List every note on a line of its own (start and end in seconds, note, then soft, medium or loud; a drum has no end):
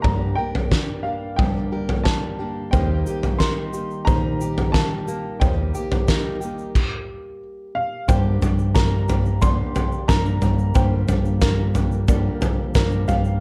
0.00 0.37 G2 medium
0.00 0.38 D3 medium
0.00 0.71 G3 medium
0.00 2.39 A#3 soft
0.00 0.70 D4 medium
0.00 0.38 A#4 medium
0.00 0.38 A#5 medium
0.04 0.34 G2 medium
0.04 0.38 G3 medium
0.04 0.38 A#3 medium
0.04 0.37 D4 medium
0.04 0.36 G4 medium
0.04 kick loud
0.04 floor tom loud
0.35 0.71 A#3 soft
0.35 0.72 D4 soft
0.35 0.71 G4 medium
0.35 1.72 A#4 medium
0.35 1.06 G5 loud
0.40 0.69 G3 soft
0.55 floor tom medium
0.71 1.05 G3 soft
0.71 1.05 A#3 soft
0.71 1.04 D4 medium
0.71 1.03 G4 soft
0.71 kick loud
0.71 snare loud
1.03 1.38 A#3 soft
1.03 1.39 D4 soft
1.03 1.38 G4 soft
1.03 1.35 F5 medium
1.07 1.38 G3 soft
1.36 1.72 G2 medium
1.36 1.72 D3 medium
1.36 2.59 G3 medium
1.36 1.73 G3 medium
1.36 1.73 A#3 medium
1.36 1.72 D4 medium
1.36 1.71 G4 medium
1.36 2.01 G5 medium
1.36 kick loud
1.36 floor tom medium
1.72 2.04 G3 soft
1.72 2.06 A#3 soft
1.72 2.06 D4 soft
1.72 2.06 G4 medium
1.72 2.75 A#4 medium
1.89 floor tom medium
2.04 2.39 G3 medium
2.04 2.40 A#3 medium
2.04 2.39 D4 medium
2.04 2.68 A5 medium
2.04 kick loud
2.04 snare loud
2.09 2.38 G4 medium
2.39 2.72 G3 soft
2.39 2.72 A#3 medium
2.39 2.73 D4 medium
2.39 2.73 G4 medium
2.71 3.03 D#2 medium
2.71 3.06 D#3 medium
2.71 3.07 G3 medium
2.71 3.07 A#3 medium
2.71 3.07 D#4 medium
2.71 3.05 G4 medium
2.71 3.39 C5 medium
2.71 3.41 G5 medium
2.71 kick medium
2.71 floor tom medium
2.71 shaker medium
3.06 3.39 A#3 soft
3.06 3.40 D#4 soft
3.06 3.40 G4 soft
3.06 shaker medium
3.23 floor tom medium
3.23 shaker soft
3.39 3.73 G3 soft
3.39 5.38 D#4 medium
3.39 4.06 A#4 medium
3.39 4.08 C6 medium
3.39 kick loud
3.39 snare loud
3.39 shaker medium
3.73 4.07 A#3 soft
3.73 4.08 D#4 soft
3.73 4.07 G4 soft
3.73 shaker medium
3.91 shaker soft
4.05 5.37 A#2 medium
4.05 4.41 D#3 medium
4.05 5.28 D#3 medium
4.05 4.41 G3 medium
4.05 4.41 A#3 medium
4.05 4.41 D#4 medium
4.05 4.73 C5 medium
4.05 4.69 A#5 medium
4.05 kick loud
4.05 floor tom medium
4.05 shaker medium
4.09 4.39 G4 medium
4.41 4.74 A#3 soft
4.41 4.75 D#4 soft
4.41 4.74 G4 medium
4.41 shaker medium
4.58 floor tom medium
4.58 shaker soft
4.72 5.08 G3 medium
4.72 5.08 A#3 medium
4.72 5.40 A#4 medium
4.72 5.36 A5 medium
4.72 kick loud
4.72 snare loud
4.72 shaker medium
4.76 5.08 D#4 medium
4.76 5.06 G4 medium
5.07 5.40 A#3 soft
5.07 5.41 D#4 medium
5.07 5.41 G4 medium
5.07 shaker medium
5.40 5.71 D#2 medium
5.40 5.74 D#3 medium
5.40 5.75 G3 medium
5.40 5.75 A#3 medium
5.40 5.75 D#4 medium
5.40 5.73 G4 medium
5.40 6.07 C5 medium
5.40 7.37 G5 medium
5.40 kick loud
5.40 floor tom loud
5.40 shaker medium
5.74 6.08 A#3 soft
5.74 6.09 D#4 soft
5.74 6.08 G4 medium
5.74 shaker loud
5.92 floor tom medium
5.92 shaker soft
6.07 6.41 G3 medium
6.07 6.42 A#3 medium
6.07 6.41 D#4 medium
6.07 6.39 G4 soft
6.07 6.74 A#4 medium
6.07 kick loud
6.07 snare loud
6.07 shaker medium
6.40 6.76 A#3 soft
6.40 6.75 D#4 medium
6.40 6.74 G4 medium
6.40 shaker medium
6.58 shaker soft
6.75 kick loud
6.75 crash medium
7.75 8.10 F5 medium
8.08 10.71 G1 medium
8.08 8.42 G2 medium
8.08 10.71 G2 medium
8.08 8.39 G2 loud
8.08 8.42 D3 medium
8.08 13.38 D3 medium
8.08 8.49 G3 medium
8.08 10.73 G3 medium
8.08 8.42 G3 medium
8.08 8.50 A#3 medium
8.08 13.40 A#3 medium
8.08 8.43 A#3 medium
8.08 8.50 D4 medium
8.08 8.42 D4 medium
8.08 8.41 G4 medium
8.08 8.50 A#4 medium
8.08 8.74 C5 medium
8.08 8.77 G5 medium
8.08 kick loud
8.08 floor tom medium
8.08 shaker medium
8.42 9.62 G2 medium
8.42 8.74 G3 soft
8.42 8.75 A#3 soft
8.42 8.76 D4 medium
8.42 8.75 G4 medium
8.42 floor tom medium
8.42 shaker medium
8.59 shaker soft
8.75 9.16 G3 medium
8.75 9.09 G3 soft
8.75 9.16 A#3 medium
8.75 9.09 A#3 medium
8.75 9.16 D4 medium
8.75 9.08 D4 medium
8.75 9.07 G4 medium
8.75 9.16 A#4 medium
8.75 9.41 A#4 medium
8.75 9.44 A#5 medium
8.75 kick loud
8.75 snare loud
8.75 floor tom medium
8.75 shaker medium
9.08 9.42 G3 soft
9.08 9.42 A#3 soft
9.08 9.42 D4 soft
9.08 9.42 G4 medium
9.08 floor tom medium
9.08 shaker medium
9.25 shaker soft
9.42 9.75 G2 medium
9.42 9.76 D3 medium
9.42 9.83 G3 medium
9.42 9.76 G3 medium
9.42 9.83 A#3 medium
9.42 9.75 A#3 medium
9.42 9.83 D4 medium
9.42 9.74 D4 medium
9.42 9.73 G4 medium
9.42 9.83 A#4 medium
9.42 10.07 D5 medium
9.42 10.05 C6 medium
9.42 kick loud
9.42 floor tom medium
9.42 shaker loud
9.75 10.06 G3 soft
9.75 10.08 A#3 soft
9.75 10.08 D4 soft
9.75 10.08 G4 medium
9.75 floor tom medium
9.75 shaker medium
9.92 shaker soft
10.08 10.39 G2 medium
10.08 10.42 G3 medium
10.08 10.50 G3 medium
10.08 10.50 A#3 medium
10.08 10.42 A#3 medium
10.08 10.50 D4 medium
10.08 10.41 D4 medium
10.08 10.40 G4 medium
10.08 10.74 A#4 medium
10.08 10.50 A#4 medium
10.08 10.77 A#5 medium
10.08 kick loud
10.08 snare loud
10.08 floor tom medium
10.08 shaker medium
10.26 shaker soft
10.41 10.72 G2 medium
10.41 10.74 G3 soft
10.41 10.75 A#3 medium
10.41 10.75 D4 medium
10.41 10.75 G4 medium
10.41 floor tom medium
10.41 shaker medium
10.59 shaker soft
10.74 13.38 G1 medium
10.74 11.08 G2 medium
10.74 13.37 G2 medium
10.74 11.05 G2 medium
10.74 11.09 D3 medium
10.74 13.39 F3 medium
10.74 11.16 G3 medium
10.74 11.09 G3 medium
10.74 11.16 A#3 medium
10.74 11.09 A#3 medium
10.74 11.16 D4 medium
10.74 11.08 D4 medium
10.74 11.06 G4 medium
10.74 11.16 A#4 medium
10.74 11.41 C5 medium
10.74 12.71 G5 medium
10.74 kick loud
10.74 floor tom medium
10.74 shaker medium
11.08 12.28 G2 medium
11.08 11.40 G3 soft
11.08 11.41 A#3 soft
11.08 11.42 D4 medium
11.08 11.42 G4 medium
11.08 floor tom medium
11.08 shaker medium
11.25 shaker soft
11.41 11.75 G3 soft
11.41 11.83 G3 medium
11.41 11.83 A#3 medium
11.41 11.76 A#3 medium
11.41 11.83 D4 medium
11.41 11.74 D4 medium
11.41 11.73 G4 medium
11.41 12.07 A#4 medium
11.41 11.83 A#4 medium
11.41 kick loud
11.41 snare loud
11.41 floor tom medium
11.41 shaker medium
11.74 12.08 G3 soft
11.74 12.08 A#3 medium
11.74 12.08 D4 medium
11.74 12.08 G4 medium
11.74 floor tom medium
11.74 shaker medium
11.92 shaker soft
12.08 12.42 G2 medium
12.08 12.42 D3 medium
12.08 12.49 G3 medium
12.08 12.42 G3 medium
12.08 12.49 A#3 medium
12.08 12.42 A#3 medium
12.08 12.49 D4 medium
12.08 12.41 D4 loud
12.08 12.40 G4 loud
12.08 12.49 A#4 loud
12.08 12.74 D5 medium
12.08 kick loud
12.08 floor tom medium
12.08 shaker medium
12.41 12.73 G3 medium
12.41 12.75 A#3 medium
12.41 12.75 D4 medium
12.41 12.75 G4 medium
12.41 floor tom medium
12.41 shaker medium
12.74 13.05 G2 medium
12.74 13.08 G3 medium
12.74 13.16 G3 medium
12.74 13.16 A#3 medium
12.74 13.09 A#3 medium
12.74 13.16 D4 medium
12.74 13.08 D4 medium
12.74 13.07 G4 medium
12.74 13.40 A#4 medium
12.74 13.16 C5 loud
12.74 kick loud
12.74 snare loud
12.74 floor tom medium
12.74 shaker medium
12.91 shaker soft
13.08 13.38 G2 medium
13.08 13.40 G3 soft
13.08 13.40 A#3 soft
13.08 13.40 D4 soft
13.08 13.40 G4 medium
13.08 13.40 F5 medium
13.08 floor tom medium
13.08 shaker medium
13.25 shaker soft